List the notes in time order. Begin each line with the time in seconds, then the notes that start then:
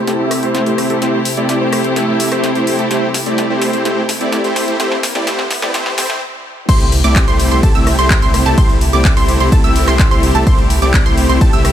Already playing: C3 A3 E4 G4, riser
0.07 A3 C4 E4 G4 A4, snare, closed hi-hat
0.19 A3 C4 E4 G4 E5
0.31 cross-stick, open hi-hat
0.43 A3 C4 E4 G4 C5, closed hi-hat
0.55 snare, closed hi-hat
0.66 A3 C4 E4 G4 C5, closed hi-hat
0.78 cross-stick, open hi-hat
0.90 A3 C4 E4 G4 A4, closed hi-hat
1.02 A3 C4 E4 G4 C5, snare, closed hi-hat
1.25 open hi-hat
1.37 A3 C4 E4 G4 D5, closed hi-hat
1.49 snare, closed hi-hat
1.61 A3 C4 E4 G4 C5
1.73 cross-stick, open hi-hat
1.84 A3 C4 E4 G4 C5, closed hi-hat
1.96 A3 C4 E4 G4 A4, snare, closed hi-hat
2.08 A3 C4 E4 G4 E5
2.20 open hi-hat
2.32 A3 C4 E4 G4 C5, cross-stick, closed hi-hat
2.44 snare, closed hi-hat
2.55 A3 C4 E4 G4 C5, closed hi-hat
2.67 open hi-hat
2.79 A3 C4 E4 G4 A4, closed hi-hat
2.91 A3 C4 E4 G4 C5, snare, closed hi-hat
3.14 snare, open hi-hat
3.26 A3 C4 E4 G4 D5, closed hi-hat
3.38 snare, closed hi-hat
3.50 A3 C4 E4 G4 C5
3.62 snare, open hi-hat
3.73 A3 C4 E4 G4 C5, closed hi-hat
3.85 A3 C4 E4 G4 C5, snare, closed hi-hat
4.09 snare, open hi-hat
4.21 A3 C4 E4 G4 D5, closed hi-hat
4.32 snare, closed hi-hat
4.44 A3 C4 E4 G4 C5, closed hi-hat
4.56 snare, open hi-hat
4.68 A3 C4 E4 G4 C5, closed hi-hat
4.80 A3 C4 E4 G4 C5, snare, closed hi-hat
4.92 snare
5.03 snare, open hi-hat
5.15 A3 C4 E4 G4 D5, snare, closed hi-hat
5.27 A3 C4 E4 G4 C5, snare, closed hi-hat
5.39 snare
5.51 snare, open hi-hat
5.62 A3 C4 E4 G4 D5, snare, closed hi-hat
5.74 A3 C4 E4 G4 C5, snare, closed hi-hat
5.86 snare
5.98 A3 C4 E4 G4 C5, snare, open hi-hat
6.10 snare, closed hi-hat
6.69 C2 C3 A3 C4 E4 G4 C5 C6, kick, closed hi-hat, crash, ride
6.80 closed hi-hat
6.92 open hi-hat
7.04 C2 A3 C4 E4 G4 D5 D6, closed hi-hat
7.16 kick, clap, closed hi-hat, ride
7.28 C2 A3 C4 E4 G4 C5 C6, closed hi-hat
7.40 open hi-hat
7.51 C2 A3 C4 E4 G4 C5 C6, closed hi-hat
7.63 C2 A3 C4 E4 G4 A4 A5, kick, closed hi-hat, ride
7.75 C2 A3 C4 E4 G4 E5 E6, closed hi-hat
7.87 cross-stick, open hi-hat
7.99 C2 A3 C4 E4 G4 C5 C6, closed hi-hat
8.10 kick, clap, closed hi-hat, ride
8.22 C2 A3 C4 E4 G4 C5 C6, closed hi-hat
8.34 cross-stick, open hi-hat
8.46 C2 A3 C4 E4 G4 A4 A5, closed hi-hat
8.58 C2 A3 C4 E4 G4 C5 C6, kick, closed hi-hat, ride
8.69 closed hi-hat
8.81 open hi-hat
8.93 C2 A3 C4 E4 G4 D5 D6, closed hi-hat
9.05 kick, clap, closed hi-hat, ride
9.17 C2 A3 C4 E4 G4 C5 C6, open hi-hat
9.29 open hi-hat
9.40 C2 A3 C4 E4 G4 C5 C6, closed hi-hat
9.52 C2 A3 C4 E4 G4 A4 A5, kick, closed hi-hat, ride
9.64 C2 A3 C4 E4 G4 E5 E6, closed hi-hat
9.76 open hi-hat
9.88 C2 A3 C4 E4 G4 C5 C6, cross-stick, clap, closed hi-hat
9.99 kick, clap, closed hi-hat, ride
10.11 C2 A3 C4 E4 G4 C5 C6, closed hi-hat
10.23 open hi-hat
10.35 C2 A3 C4 E4 G4 A4 A5, closed hi-hat
10.47 C2 A3 C4 E4 G4 C5 C6, kick, closed hi-hat, ride
10.58 closed hi-hat
10.70 open hi-hat
10.82 C2 A3 C4 E4 G4 D5 D6, closed hi-hat
10.94 kick, clap, closed hi-hat, ride
11.06 C2 A3 C4 E4 G4 C5 C6, closed hi-hat
11.18 open hi-hat
11.29 C2 A3 C4 E4 G4 C5 C6, closed hi-hat
11.41 C2 A3 C4 E4 G4 A4 A5, kick, closed hi-hat, ride
11.53 C2 A3 C4 E4 G4 E5 E6, closed hi-hat
11.65 cross-stick, open hi-hat